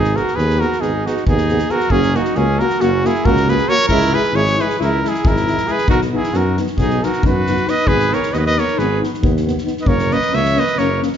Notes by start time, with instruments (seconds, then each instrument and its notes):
Already playing: tuba G#1, flugelhorn D#4, trumpet G#4
0.04 snare
0.13 trombone B3, flugelhorn F#4, euphonium G#4, trumpet A#4, snare
0.28 snare
0.35 tuba D#2, trombone B3, flugelhorn G#4, euphonium G#4, trumpet B4, snare
0.50 snare
0.59 trombone B3, flugelhorn F#4, euphonium G#4, trumpet A#4, snare
0.72 snare
0.80 tuba G#1, trombone B3, flugelhorn D#4, trumpet G#4, euphonium G#4, snare
1.05 trombone B3, flugelhorn D#4, trumpet F#4, euphonium G#4, snare
1.17 snare
1.26 tuba D#2, trombone B3, flugelhorn D#4, trumpet G#4, euphonium G#4, kick
1.37 snare
1.49 trombone B3, euphonium G#4, snare
1.58 snare
1.69 trombone B3, flugelhorn F#4, euphonium G#4, trumpet A#4, snare
1.80 snare
1.90 tuba F#1, trombone A#3, flugelhorn C#4, euphonium F#4, trumpet G#4, kick
2.02 snare
2.14 trombone A#3, flugelhorn D#4, euphonium F#4, trumpet F#4, snare
2.25 snare
2.35 tuba C#2, trombone A#3, flugelhorn C#4, euphonium F#4, trumpet G#4, snare
2.59 trombone A#3, euphonium F#4, flugelhorn F#4, trumpet A#4, snare
2.70 snare
2.80 tuba F#1, trombone A#3, flugelhorn C#4, euphonium F#4, trumpet F#4, snare
3.04 trombone A#3, flugelhorn E4, euphonium F#4, trumpet G#4, snare
3.15 snare
3.25 tuba C#2, trombone A#3, euphonium F#4, flugelhorn F#4, trumpet A#4, kick
3.36 snare
3.47 trombone A#3, euphonium F#4, flugelhorn G#4, trumpet B4, snare
3.58 snare
3.69 trombone A#3, euphonium F#4, flugelhorn A#4, trumpet C#5, snare
3.78 snare
3.88 tuba C#2, trombone G#3, euphonium E4, flugelhorn E4, trumpet A#4, kick
4.01 snare
4.13 trombone G#3, euphonium E4, flugelhorn G#4, trumpet B4, snare
4.23 snare
4.33 tuba G#1, trombone G#3, euphonium E4, flugelhorn G#4, trumpet C#5, snare
4.47 snare
4.58 trombone G#3, euphonium E4, flugelhorn G#4, trumpet B4, snare
4.70 snare
4.79 tuba C#2, trombone G#3, flugelhorn E4, euphonium E4, trumpet A#4, snare
5.02 trombone G#3, flugelhorn E4, euphonium E4, snare
5.09 trumpet G#4
5.14 snare
5.24 tuba G#1, trombone G#3, euphonium E4, flugelhorn E4, trumpet A#4, kick
5.36 snare
5.47 trombone G#3, euphonium E4, snare
5.57 snare
5.67 trombone G#3, euphonium E4, flugelhorn G#4, snare
5.71 trumpet B4
5.78 snare
5.87 tuba B1, trombone B3, euphonium D#4, flugelhorn F#4, trumpet A#4, kick
6.01 snare
6.13 trombone B3, euphonium D#4, flugelhorn E4, trumpet G#4
6.23 snare
6.33 tuba F#2, trombone B3, euphonium D#4, flugelhorn F#4, snare
6.37 trumpet A#4
6.57 trombone B3, euphonium D#4, snare
6.67 snare
6.77 tuba B1, trombone B3, euphonium D#4, flugelhorn D#4, trumpet G#4, kick, snare
6.90 snare
7.02 trombone B3, euphonium D#4, flugelhorn F#4, trumpet A#4, snare
7.12 snare
7.23 tuba F#2, trombone B3, euphonium D#4, flugelhorn F#4, trumpet B4, kick
7.46 trombone B3, euphonium D#4, snare
7.56 snare
7.67 trombone B3, euphonium D#4, flugelhorn B4, trumpet D#5, snare
7.86 tuba G#1, trombone B3, euphonium D#4, flugelhorn G#4, trumpet B4, kick
8.00 snare
8.11 trombone B3, euphonium D#4, flugelhorn A#4, trumpet C#5, snare
8.23 snare
8.31 tuba D#2, trombone B3, euphonium D#4, flugelhorn B4, trumpet D#5, snare
8.37 flugelhorn B4, trumpet D#5
8.46 flugelhorn B4, trumpet D#5, snare
8.55 trombone B3, euphonium D#4, flugelhorn A#4, snare
8.59 trumpet C#5
8.68 snare
8.75 tuba G#1, trombone B3, euphonium D#4, flugelhorn G#4, trumpet B4, snare
9.00 trombone B3, euphonium D#4, snare
9.14 snare
9.21 tuba D#2, trombone B3, euphonium D#4, kick
9.37 snare
9.45 trombone B3, euphonium D#4, snare
9.58 snare
9.65 trombone B3, euphonium D#4, snare
9.77 snare
9.81 euphonium C#4, flugelhorn B4, trumpet D#5
9.86 tuba F#1, trombone A#3, flugelhorn A#4, trumpet C#5, kick
9.99 snare
10.10 trombone A#3, euphonium C#4, flugelhorn B4, trumpet D#5, snare
10.22 snare
10.30 tuba C#2, trombone A#3, euphonium C#4, snare
10.34 flugelhorn C#5, trumpet E5
10.45 snare
10.55 trombone A#3, euphonium C#4, trumpet D#5, snare
10.60 flugelhorn B4
10.67 snare
10.76 tuba F#1, trombone A#3, euphonium C#4, flugelhorn A#4, trumpet C#5, snare
11.01 trombone A#3, euphonium C#4, snare
11.12 snare